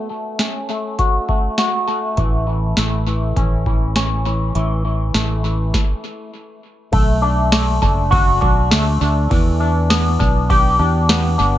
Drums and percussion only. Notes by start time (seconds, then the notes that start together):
0.39 snare, closed hi-hat
0.99 kick, closed hi-hat
1.29 kick
1.58 snare, closed hi-hat
2.17 kick, closed hi-hat
2.77 snare, closed hi-hat
3.37 kick, closed hi-hat
3.66 kick
3.96 snare, closed hi-hat
4.55 closed hi-hat
5.14 snare, closed hi-hat
5.74 kick, snare
6.93 kick, ride
7.52 snare, ride, tambourine
7.82 kick
8.12 kick, ride
8.42 kick
8.71 snare, ride, tambourine
9.31 kick, ride
9.90 snare, ride, tambourine
10.20 kick
10.50 kick, ride
11.09 snare, ride, tambourine